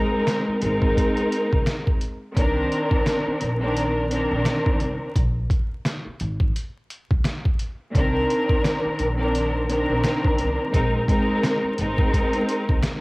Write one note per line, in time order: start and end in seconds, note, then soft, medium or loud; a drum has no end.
0.00 0.57 G#3 loud
0.00 0.57 C4 medium
0.00 0.58 D#4 medium
0.00 0.58 A#4 loud
0.27 snare loud
0.27 snare medium
0.27 closed hi-hat loud
0.48 muted upright bass stroke soft
0.62 0.91 G#1 loud
0.62 1.92 G#3 loud
0.62 1.93 C4 loud
0.62 1.93 D#4 loud
0.62 1.93 A#4 loud
0.62 closed hi-hat medium
0.82 kick medium
0.97 kick medium
0.97 closed hi-hat medium
1.17 closed hi-hat soft
1.32 closed hi-hat medium
1.53 1.65 C2 medium
1.53 kick medium
1.66 snare loud
1.66 snare medium
1.66 closed hi-hat loud
1.87 kick medium
2.01 closed hi-hat medium
2.35 2.65 C2 loud
2.35 3.50 D#3 loud
2.35 3.50 C4 medium
2.35 3.50 D4 medium
2.35 3.51 A#4 loud
2.35 kick loud
2.35 closed hi-hat loud
2.72 closed hi-hat medium
2.91 kick medium
3.06 snare loud
3.06 snare medium
3.06 closed hi-hat medium
3.27 muted upright bass stroke soft
3.41 4.27 A#1 medium
3.41 closed hi-hat medium
3.59 4.06 D#3 loud
3.59 4.07 C4 medium
3.59 4.07 D4 medium
3.59 4.07 A#4 loud
3.77 closed hi-hat medium
4.10 5.08 D#3 loud
4.10 5.09 C4 medium
4.10 5.09 D4 medium
4.10 5.09 A#4 loud
4.10 closed hi-hat medium
4.31 4.43 A#1 medium
4.45 snare loud
4.45 snare medium
4.45 closed hi-hat loud
4.66 kick loud
4.80 4.97 C2 medium
4.80 closed hi-hat medium
5.16 5.44 A#1 loud
5.16 kick loud
5.16 closed hi-hat medium
5.50 kick loud
5.50 closed hi-hat medium
5.85 snare loud
5.85 snare medium
5.85 closed hi-hat medium
6.06 muted upright bass stroke soft
6.20 6.49 G#1 loud
6.20 closed hi-hat medium
6.40 kick loud
6.56 closed hi-hat medium
6.90 closed hi-hat medium
7.11 7.23 C2 medium
7.11 kick loud
7.24 snare loud
7.24 snare medium
7.24 closed hi-hat loud
7.45 kick medium
7.59 closed hi-hat medium
7.94 8.24 C2 loud
7.94 9.08 D#3 loud
7.94 9.08 C4 medium
7.94 9.09 D4 medium
7.94 9.09 A#4 loud
7.94 kick loud
7.94 closed hi-hat medium
8.30 closed hi-hat medium
8.49 kick medium
8.64 snare loud
8.64 snare medium
8.64 closed hi-hat medium
8.85 muted upright bass stroke soft
8.99 9.85 A#1 medium
8.99 closed hi-hat medium
9.17 9.64 D#3 loud
9.17 9.65 C4 medium
9.17 9.65 D4 medium
9.17 9.66 A#4 loud
9.35 closed hi-hat medium
9.68 10.66 D#3 loud
9.68 10.67 C4 medium
9.68 10.67 D4 medium
9.68 10.67 A#4 loud
9.68 closed hi-hat medium
9.90 10.02 A#1 medium
10.04 snare loud
10.04 snare medium
10.04 closed hi-hat loud
10.24 kick medium
10.38 10.56 C2 medium
10.38 closed hi-hat medium
10.70 11.03 A#1 loud
10.70 11.05 G#3 medium
10.70 11.05 C4 medium
10.70 11.05 D#4 medium
10.70 11.06 A#4 loud
10.70 kick loud
10.70 closed hi-hat loud
11.07 11.73 G#3 loud
11.07 11.74 C4 medium
11.07 11.74 D#4 medium
11.07 11.74 A#4 loud
11.07 kick medium
11.07 closed hi-hat medium
11.43 snare loud
11.43 snare medium
11.43 closed hi-hat medium
11.64 muted upright bass stroke soft
11.78 12.07 G#1 loud
11.78 13.01 G#3 loud
11.78 13.01 C4 medium
11.78 13.01 D#4 medium
11.78 13.01 A#4 loud
11.78 closed hi-hat medium
11.98 kick medium
12.14 kick medium
12.14 closed hi-hat loud
12.33 closed hi-hat soft
12.49 closed hi-hat medium
12.69 12.81 C2 medium
12.69 kick medium
12.83 snare loud
12.83 snare medium
12.83 closed hi-hat loud